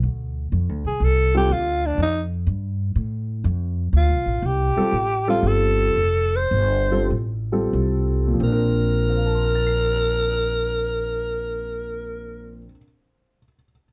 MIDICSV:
0, 0, Header, 1, 5, 480
1, 0, Start_track
1, 0, Key_signature, -2, "major"
1, 0, Tempo, 488998
1, 35, Time_signature, 4, 2, 24, 8
1, 4835, Tempo, 532860
1, 6275, Tempo, 604230
1, 7235, Tempo, 669643
1, 7715, Tempo, 697674
1, 11517, End_track
2, 0, Start_track
2, 0, Title_t, "Alto saxophone"
2, 0, Program_c, 0, 65
2, 853, Note_on_c, 0, 68, 75
2, 1018, Note_on_c, 0, 69, 87
2, 1033, Note_off_c, 0, 68, 0
2, 1331, Note_off_c, 0, 69, 0
2, 1345, Note_on_c, 0, 67, 76
2, 1499, Note_on_c, 0, 65, 75
2, 1514, Note_off_c, 0, 67, 0
2, 1827, Note_on_c, 0, 62, 75
2, 1842, Note_off_c, 0, 65, 0
2, 1965, Note_off_c, 0, 62, 0
2, 1986, Note_on_c, 0, 63, 77
2, 2171, Note_off_c, 0, 63, 0
2, 3895, Note_on_c, 0, 65, 76
2, 4376, Note_on_c, 0, 67, 78
2, 4391, Note_off_c, 0, 65, 0
2, 5162, Note_off_c, 0, 67, 0
2, 5169, Note_on_c, 0, 65, 82
2, 5328, Note_on_c, 0, 69, 80
2, 5341, Note_off_c, 0, 65, 0
2, 6128, Note_on_c, 0, 72, 84
2, 6141, Note_off_c, 0, 69, 0
2, 6747, Note_off_c, 0, 72, 0
2, 7739, Note_on_c, 0, 70, 78
2, 10677, Note_off_c, 0, 70, 0
2, 11517, End_track
3, 0, Start_track
3, 0, Title_t, "Grand piano"
3, 0, Program_c, 1, 0
3, 1321, Note_on_c, 1, 55, 62
3, 1322, Note_on_c, 1, 60, 60
3, 1322, Note_on_c, 1, 65, 59
3, 1325, Note_on_c, 1, 69, 72
3, 1457, Note_off_c, 1, 55, 0
3, 1457, Note_off_c, 1, 60, 0
3, 1458, Note_off_c, 1, 65, 0
3, 1459, Note_off_c, 1, 69, 0
3, 4680, Note_on_c, 1, 55, 73
3, 4685, Note_on_c, 1, 60, 61
3, 4688, Note_on_c, 1, 69, 79
3, 4689, Note_on_c, 1, 65, 66
3, 4821, Note_off_c, 1, 55, 0
3, 4824, Note_off_c, 1, 60, 0
3, 4825, Note_off_c, 1, 69, 0
3, 4826, Note_off_c, 1, 65, 0
3, 5149, Note_on_c, 1, 55, 69
3, 5151, Note_on_c, 1, 65, 56
3, 5152, Note_on_c, 1, 60, 63
3, 5155, Note_on_c, 1, 69, 73
3, 5745, Note_off_c, 1, 55, 0
3, 5746, Note_off_c, 1, 65, 0
3, 5747, Note_off_c, 1, 60, 0
3, 5748, Note_off_c, 1, 69, 0
3, 6585, Note_on_c, 1, 60, 52
3, 6586, Note_on_c, 1, 55, 60
3, 6586, Note_on_c, 1, 65, 57
3, 6591, Note_on_c, 1, 69, 62
3, 6723, Note_off_c, 1, 60, 0
3, 6724, Note_off_c, 1, 55, 0
3, 6724, Note_off_c, 1, 65, 0
3, 6726, Note_off_c, 1, 69, 0
3, 7067, Note_on_c, 1, 55, 61
3, 7069, Note_on_c, 1, 60, 57
3, 7070, Note_on_c, 1, 65, 53
3, 7073, Note_on_c, 1, 69, 67
3, 7623, Note_on_c, 1, 46, 61
3, 7667, Note_on_c, 1, 53, 55
3, 7681, Note_off_c, 1, 55, 0
3, 7682, Note_off_c, 1, 60, 0
3, 7682, Note_off_c, 1, 65, 0
3, 7683, Note_off_c, 1, 69, 0
3, 7713, Note_on_c, 1, 60, 54
3, 7758, Note_on_c, 1, 62, 57
3, 7797, Note_on_c, 1, 70, 68
3, 8194, Note_on_c, 1, 72, 39
3, 8242, Note_on_c, 1, 77, 42
3, 8304, Note_on_c, 1, 81, 39
3, 8367, Note_on_c, 1, 84, 35
3, 8433, Note_on_c, 1, 89, 35
3, 8507, Note_on_c, 1, 93, 32
3, 8585, Note_on_c, 1, 96, 31
3, 10592, Note_off_c, 1, 46, 0
3, 10635, Note_off_c, 1, 53, 0
3, 10679, Note_off_c, 1, 60, 0
3, 10724, Note_off_c, 1, 62, 0
3, 10763, Note_off_c, 1, 70, 0
3, 11132, Note_off_c, 1, 72, 0
3, 11180, Note_off_c, 1, 77, 0
3, 11242, Note_off_c, 1, 81, 0
3, 11305, Note_off_c, 1, 84, 0
3, 11371, Note_off_c, 1, 89, 0
3, 11445, Note_off_c, 1, 93, 0
3, 11517, Note_off_c, 1, 96, 0
3, 11517, End_track
4, 0, Start_track
4, 0, Title_t, "Upright bass"
4, 0, Program_c, 2, 32
4, 30, Note_on_c, 2, 38, 70
4, 497, Note_off_c, 2, 38, 0
4, 511, Note_on_c, 2, 41, 76
4, 677, Note_off_c, 2, 41, 0
4, 677, Note_on_c, 2, 38, 53
4, 825, Note_off_c, 2, 38, 0
4, 831, Note_on_c, 2, 36, 56
4, 977, Note_off_c, 2, 36, 0
4, 983, Note_on_c, 2, 36, 76
4, 1452, Note_off_c, 2, 36, 0
4, 1463, Note_on_c, 2, 38, 80
4, 1931, Note_off_c, 2, 38, 0
4, 1939, Note_on_c, 2, 41, 75
4, 2409, Note_off_c, 2, 41, 0
4, 2421, Note_on_c, 2, 43, 79
4, 2889, Note_off_c, 2, 43, 0
4, 2900, Note_on_c, 2, 45, 78
4, 3368, Note_off_c, 2, 45, 0
4, 3378, Note_on_c, 2, 41, 87
4, 3847, Note_off_c, 2, 41, 0
4, 3856, Note_on_c, 2, 38, 78
4, 4022, Note_on_c, 2, 36, 51
4, 4037, Note_off_c, 2, 38, 0
4, 4175, Note_off_c, 2, 36, 0
4, 4181, Note_on_c, 2, 33, 58
4, 4333, Note_off_c, 2, 33, 0
4, 4342, Note_on_c, 2, 36, 83
4, 4652, Note_off_c, 2, 36, 0
4, 4830, Note_on_c, 2, 33, 76
4, 5281, Note_off_c, 2, 33, 0
4, 5287, Note_on_c, 2, 31, 78
4, 5756, Note_off_c, 2, 31, 0
4, 5768, Note_on_c, 2, 29, 69
4, 6257, Note_off_c, 2, 29, 0
4, 6263, Note_on_c, 2, 31, 75
4, 6721, Note_off_c, 2, 31, 0
4, 6734, Note_on_c, 2, 33, 75
4, 7217, Note_off_c, 2, 33, 0
4, 7234, Note_on_c, 2, 36, 76
4, 7701, Note_off_c, 2, 36, 0
4, 7712, Note_on_c, 2, 34, 76
4, 10650, Note_off_c, 2, 34, 0
4, 11517, End_track
5, 0, Start_track
5, 0, Title_t, "Muted upright bass strokes"
5, 4676, Note_on_c, 9, 29, 36
5, 4774, Note_off_c, 9, 29, 0
5, 11517, End_track
0, 0, End_of_file